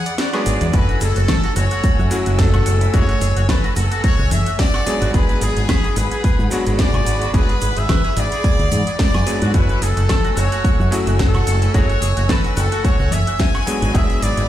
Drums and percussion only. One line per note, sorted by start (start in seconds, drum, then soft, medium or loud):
0.06 closed hi-hat medium
0.06 shaker soft
0.18 snare loud
0.18 closed hi-hat medium
0.18 shaker medium
0.18 shaker soft
0.33 snare soft
0.33 closed hi-hat soft
0.33 high woodblock medium
0.33 shaker soft
0.46 open hi-hat loud
0.46 shaker medium
0.61 closed hi-hat medium
0.61 shaker soft
0.73 kick loud
0.73 closed hi-hat medium
0.73 shaker medium
0.73 shaker soft
0.89 closed hi-hat soft
0.89 shaker soft
1.01 open hi-hat loud
1.01 shaker loud
1.01 shaker medium
1.16 closed hi-hat medium
1.16 shaker soft
1.28 kick loud
1.28 snare loud
1.28 closed hi-hat medium
1.28 high conga loud
1.28 high woodblock medium
1.28 shaker medium
1.28 shaker soft
1.44 closed hi-hat soft
1.44 shaker soft
1.56 open hi-hat loud
1.56 shaker loud
1.56 shaker medium
1.70 closed hi-hat medium
1.70 shaker soft
1.72 shaker soft
1.84 kick loud
1.84 closed hi-hat medium
1.84 shaker medium
1.84 shaker soft
1.99 shaker soft
2.11 open hi-hat loud
2.11 shaker loud
2.11 shaker medium
2.26 closed hi-hat medium
2.26 shaker soft
2.39 kick loud
2.39 snare loud
2.39 closed hi-hat medium
2.39 shaker soft
2.39 shaker medium
2.54 closed hi-hat soft
2.54 low conga medium
2.54 high woodblock medium
2.54 shaker soft
2.66 open hi-hat loud
2.66 shaker medium
2.81 closed hi-hat medium
2.81 shaker soft
2.94 kick loud
2.94 closed hi-hat medium
2.94 shaker soft
2.94 shaker medium
3.09 closed hi-hat soft
3.09 shaker soft
3.21 open hi-hat loud
3.21 shaker medium
3.37 closed hi-hat medium
3.37 shaker soft
3.49 kick loud
3.49 snare loud
3.49 closed hi-hat medium
3.49 high conga medium
3.49 high woodblock medium
3.49 shaker soft
3.64 closed hi-hat soft
3.64 shaker soft
3.76 open hi-hat loud
3.76 shaker medium
3.91 closed hi-hat medium
3.91 shaker soft
4.04 kick loud
4.04 closed hi-hat medium
4.04 shaker medium
4.04 shaker soft
4.19 shaker soft
4.31 open hi-hat loud
4.31 high conga medium
4.31 shaker medium
4.46 closed hi-hat medium
4.46 shaker soft
4.47 shaker soft
4.59 kick loud
4.59 snare loud
4.59 closed hi-hat medium
4.59 shaker medium
4.59 shaker soft
4.74 snare soft
4.74 closed hi-hat soft
4.74 high woodblock medium
4.74 shaker soft
4.87 open hi-hat loud
4.87 shaker loud
4.87 shaker medium
5.01 closed hi-hat medium
5.01 shaker soft
5.14 kick loud
5.14 closed hi-hat medium
5.14 shaker soft
5.29 closed hi-hat soft
5.29 shaker soft
5.41 open hi-hat loud
5.41 shaker loud
5.41 shaker medium
5.57 closed hi-hat soft
5.57 shaker soft
5.69 kick loud
5.69 snare loud
5.69 closed hi-hat medium
5.69 high conga medium
5.69 high woodblock medium
5.69 shaker soft
5.84 closed hi-hat soft
5.84 shaker soft
5.96 open hi-hat loud
5.96 shaker medium
5.96 shaker loud
6.11 closed hi-hat medium
6.11 shaker soft
6.24 kick loud
6.24 closed hi-hat medium
6.24 shaker soft
6.39 shaker soft
6.51 open hi-hat loud
6.51 shaker loud
6.51 shaker medium
6.66 closed hi-hat medium
6.66 shaker soft
6.79 kick loud
6.79 snare loud
6.79 closed hi-hat medium
6.79 shaker soft
6.93 closed hi-hat soft
6.93 low conga medium
6.93 high woodblock medium
6.93 shaker soft
6.95 shaker soft
7.06 open hi-hat loud
7.06 shaker medium
7.22 closed hi-hat soft
7.22 shaker soft
7.34 kick loud
7.34 closed hi-hat medium
7.34 shaker soft
7.49 closed hi-hat soft
7.49 shaker soft
7.61 open hi-hat loud
7.61 shaker medium
7.77 closed hi-hat soft
7.77 shaker soft
7.89 kick loud
7.89 snare loud
7.89 closed hi-hat medium
7.89 high conga medium
7.89 high woodblock medium
7.89 shaker soft
8.04 closed hi-hat soft
8.04 shaker soft
8.17 open hi-hat loud
8.17 shaker medium
8.32 closed hi-hat medium
8.32 shaker soft
8.44 kick loud
8.44 closed hi-hat medium
8.44 shaker soft
8.44 shaker medium
8.59 closed hi-hat soft
8.59 shaker soft
8.71 open hi-hat loud
8.71 high conga medium
8.71 shaker medium
8.87 closed hi-hat medium
8.87 shaker soft
8.99 kick loud
8.99 snare loud
8.99 closed hi-hat medium
8.99 shaker soft
9.14 snare soft
9.14 closed hi-hat soft
9.14 high woodblock medium
9.14 shaker soft
9.27 open hi-hat loud
9.27 shaker medium
9.27 shaker loud
9.42 closed hi-hat medium
9.42 shaker soft
9.54 kick loud
9.54 closed hi-hat medium
9.54 shaker soft
9.69 closed hi-hat soft
9.69 shaker soft
9.82 open hi-hat loud
9.82 shaker medium
9.97 closed hi-hat soft
9.97 shaker soft
10.09 kick loud
10.09 snare loud
10.09 closed hi-hat medium
10.09 high conga medium
10.09 high woodblock medium
10.09 shaker soft
10.24 closed hi-hat soft
10.24 shaker soft
10.37 open hi-hat loud
10.37 shaker medium
10.52 closed hi-hat medium
10.52 shaker soft
10.64 kick loud
10.64 closed hi-hat medium
10.64 shaker soft
10.80 shaker soft
10.92 open hi-hat loud
10.92 shaker medium
11.06 closed hi-hat medium
11.06 shaker soft
11.19 kick loud
11.19 snare loud
11.19 closed hi-hat medium
11.19 shaker soft
11.19 shaker medium
11.34 closed hi-hat soft
11.34 low conga medium
11.34 high woodblock medium
11.34 shaker soft
11.47 open hi-hat loud
11.47 shaker medium
11.62 closed hi-hat soft
11.62 shaker soft
11.74 kick loud
11.74 closed hi-hat medium
11.74 shaker medium
11.74 shaker soft
11.90 closed hi-hat soft
11.90 shaker soft
12.02 open hi-hat loud
12.02 shaker medium
12.17 closed hi-hat medium
12.17 shaker soft
12.29 kick loud
12.29 snare loud
12.29 closed hi-hat medium
12.29 high conga medium
12.29 high woodblock medium
12.29 shaker soft
12.44 closed hi-hat soft
12.44 shaker soft
12.56 open hi-hat loud
12.56 shaker medium
12.71 closed hi-hat medium
12.71 shaker soft
12.73 shaker soft
12.85 kick loud
12.85 closed hi-hat medium
12.85 shaker soft
12.99 shaker soft
13.11 open hi-hat loud
13.11 high conga medium
13.11 shaker medium
13.27 closed hi-hat medium
13.27 shaker soft
13.39 kick loud
13.39 snare loud
13.39 closed hi-hat medium
13.39 shaker medium
13.40 shaker soft
13.54 snare soft
13.54 closed hi-hat soft
13.54 high woodblock medium
13.54 shaker soft
13.67 open hi-hat loud
13.67 shaker loud
13.67 shaker medium
13.81 closed hi-hat medium
13.81 shaker soft
13.83 shaker soft
13.94 kick loud
13.94 closed hi-hat medium
13.94 shaker medium
13.94 shaker soft
14.10 closed hi-hat soft
14.10 shaker soft
14.22 open hi-hat loud
14.22 shaker medium
14.37 closed hi-hat medium
14.37 shaker soft